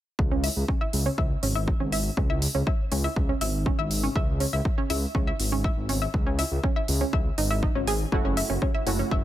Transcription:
0.19 0.49 C#2 loud
0.19 kick loud
0.32 0.39 C#4 medium
0.44 0.51 E5 medium
0.44 open hi-hat loud
0.56 0.64 C#2 medium
0.68 0.76 C#4 medium
0.68 kick loud
0.81 0.88 E5 medium
0.93 1.09 C#2 medium
0.93 open hi-hat medium
1.06 1.13 C#4 medium
1.18 1.34 C#2 medium
1.18 1.25 E5 medium
1.18 kick loud
1.43 1.73 G#1 medium
1.43 1.50 C#4 medium
1.43 open hi-hat loud
1.55 1.63 E5 medium
1.68 kick loud
1.80 2.10 G#1 medium
1.80 1.87 C#4 medium
1.92 2.00 E5 medium
1.92 open hi-hat medium
2.17 2.47 C#2 loud
2.17 2.25 C#4 medium
2.17 kick loud
2.30 2.37 E5 medium
2.42 open hi-hat loud
2.55 2.62 C#2 medium
2.55 2.62 C#4 medium
2.67 2.74 E5 medium
2.67 kick loud
2.92 3.08 C#2 medium
2.92 2.99 C#4 medium
2.92 open hi-hat medium
3.04 3.11 E5 medium
3.16 3.32 C#2 medium
3.16 kick loud
3.29 3.36 C#4 medium
3.41 3.71 G#1 medium
3.41 3.49 E5 medium
3.41 open hi-hat loud
3.66 3.73 C#4 medium
3.66 kick loud
3.79 4.08 G#1 medium
3.79 3.86 E5 medium
3.91 open hi-hat medium
4.03 4.11 C#4 medium
4.16 4.46 C#2 loud
4.16 4.23 E5 medium
4.16 kick loud
4.40 4.48 C#4 medium
4.40 open hi-hat loud
4.53 4.61 C#2 medium
4.53 4.60 E5 medium
4.65 kick loud
4.78 4.85 C#4 medium
4.90 5.06 C#2 medium
4.90 4.97 E5 medium
4.90 open hi-hat medium
5.15 5.31 C#2 medium
5.15 5.22 C#4 medium
5.15 kick loud
5.27 5.34 E5 medium
5.40 5.70 G#1 medium
5.40 open hi-hat loud
5.52 5.59 C#4 medium
5.64 5.72 E5 medium
5.64 kick loud
5.77 6.07 G#1 medium
5.89 5.97 C#4 medium
5.89 open hi-hat medium
6.02 6.09 E5 medium
6.14 6.44 C#2 loud
6.14 kick loud
6.27 6.34 C#4 medium
6.39 6.46 E5 medium
6.39 open hi-hat loud
6.51 6.59 C#2 medium
6.64 6.71 C#4 medium
6.64 kick loud
6.76 6.83 E5 medium
6.88 7.04 C#2 medium
6.88 open hi-hat medium
7.01 7.08 C#4 medium
7.13 7.29 C#2 medium
7.13 7.20 E5 medium
7.13 kick loud
7.38 7.68 G#1 medium
7.38 7.49 D#4 medium
7.38 open hi-hat loud
7.51 7.58 E5 medium
7.63 7.70 D#4 medium
7.63 kick loud
7.75 8.05 G#1 medium
7.75 7.82 C#4 medium
7.87 7.92 G#4 loud
7.87 open hi-hat medium
8.12 8.42 F#1 loud
8.12 8.84 A3 medium
8.12 8.20 C#4 medium
8.12 8.84 E4 medium
8.12 8.84 F#4 medium
8.12 kick loud
8.25 8.32 C#4 medium
8.37 8.44 E5 medium
8.37 open hi-hat loud
8.50 8.57 F#1 medium
8.50 8.57 C#4 medium
8.62 8.69 C#4 medium
8.62 kick loud
8.74 8.82 E5 medium
8.87 9.03 F#1 medium
8.87 9.24 A3 medium
8.87 8.94 C#4 medium
8.87 9.24 E4 medium
8.87 9.24 F#4 medium
8.87 open hi-hat medium
8.99 9.06 C#4 medium
9.11 9.24 F#1 medium
9.11 9.19 E5 medium
9.11 kick loud

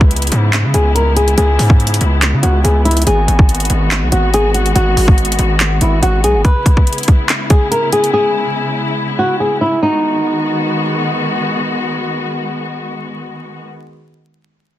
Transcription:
0.00 0.30 C#2 loud
0.00 3.03 C#3 medium
0.00 3.03 G#3 medium
0.00 9.79 B3 medium
0.00 3.03 E4 medium
0.00 0.49 B4 loud
0.00 kick medium
0.11 closed hi-hat medium
0.16 closed hi-hat medium
0.22 closed hi-hat medium
0.27 closed hi-hat medium
0.32 0.66 G#2 loud
0.32 closed hi-hat medium
0.53 clap loud
0.53 closed hi-hat medium
0.64 0.74 C#3 loud
0.74 1.35 C#2 loud
0.74 0.92 G#4 medium
0.74 closed hi-hat medium
0.95 1.13 A#4 medium
0.95 closed hi-hat medium
1.16 1.34 G#4 medium
1.16 closed hi-hat medium
1.28 closed hi-hat soft
1.37 1.58 C#2 loud
1.37 2.18 G#4 loud
1.37 closed hi-hat medium
1.59 1.99 G#2 loud
1.59 open hi-hat medium
1.70 kick medium
1.80 closed hi-hat soft
1.87 closed hi-hat medium
1.94 closed hi-hat medium
2.01 2.35 C#2 loud
2.01 closed hi-hat medium
2.22 clap loud
2.22 closed hi-hat medium
2.33 2.43 C#3 loud
2.43 2.63 C#2 loud
2.43 2.61 F#4 medium
2.43 closed hi-hat medium
2.64 3.05 C#2 loud
2.64 2.82 G#4 medium
2.64 closed hi-hat medium
2.85 3.03 E4 medium
2.85 closed hi-hat medium
2.91 closed hi-hat medium
2.97 closed hi-hat medium
3.02 closed hi-hat medium
3.07 3.27 G#1 loud
3.07 6.41 D#3 medium
3.07 6.41 G#3 medium
3.07 6.41 F#4 medium
3.07 3.87 G#4 loud
3.07 closed hi-hat medium
3.28 3.68 G#1 loud
3.28 closed hi-hat medium
3.39 kick medium
3.49 closed hi-hat medium
3.55 closed hi-hat medium
3.60 closed hi-hat medium
3.65 closed hi-hat medium
3.70 4.04 G#1 loud
3.70 closed hi-hat medium
3.91 clap loud
3.91 closed hi-hat medium
4.02 4.12 B1 loud
4.12 4.73 G#1 loud
4.12 4.30 F#4 medium
4.12 closed hi-hat medium
4.34 4.52 G#4 loud
4.34 closed hi-hat medium
4.54 4.72 F#4 medium
4.54 closed hi-hat medium
4.66 closed hi-hat soft
4.75 4.96 G#1 loud
4.75 5.56 F#4 loud
4.75 closed hi-hat medium
4.97 5.37 G#1 loud
4.97 open hi-hat medium
5.08 kick medium
5.18 closed hi-hat soft
5.25 closed hi-hat medium
5.32 closed hi-hat medium
5.39 5.80 G#1 loud
5.39 closed hi-hat medium
5.60 clap loud
5.60 closed hi-hat medium
5.81 6.02 G#1 loud
5.81 6.00 E4 medium
5.81 closed hi-hat medium
6.02 6.25 G#1 loud
6.02 6.21 F#4 medium
6.02 closed hi-hat medium
6.24 6.36 B1 loud
6.24 6.42 G#4 medium
6.24 closed hi-hat medium
6.35 6.44 G#1 loud
6.45 9.79 C#3 medium
6.45 9.79 G#3 medium
6.45 9.79 E4 medium
6.45 7.25 B4 loud
6.45 kick loud
6.45 closed hi-hat medium
6.66 kick loud
6.66 closed hi-hat medium
6.77 kick medium
6.87 closed hi-hat medium
6.93 closed hi-hat medium
6.98 closed hi-hat medium
7.03 closed hi-hat medium
7.08 kick loud
7.08 closed hi-hat medium
7.29 clap loud
7.29 closed hi-hat medium
7.50 7.68 G#4 medium
7.50 kick loud
7.50 closed hi-hat medium
7.71 7.89 A#4 loud
7.71 closed hi-hat medium
7.92 8.11 G#4 medium
7.92 closed hi-hat medium
8.04 closed hi-hat soft
8.13 8.94 G#4 loud
9.19 9.37 F#4 medium
9.40 9.58 G#4 medium
9.61 9.79 E4 medium
9.83 13.64 D#3 medium
9.83 13.64 G#3 medium
9.83 13.64 B3 medium
9.83 11.05 D#4 medium
9.83 13.64 F#4 medium

